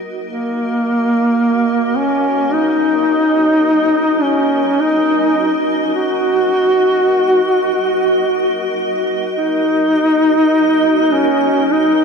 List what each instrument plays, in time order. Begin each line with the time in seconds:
Already playing: ambient pad F#4 A#4 D#5
0.26 duduk A#3
1.97 duduk C#4
2.54 duduk D#4
4.22 duduk C#4
4.80 duduk D#4
5.92 duduk F#4
9.38 duduk D#4
11.12 duduk C#4
11.72 duduk D#4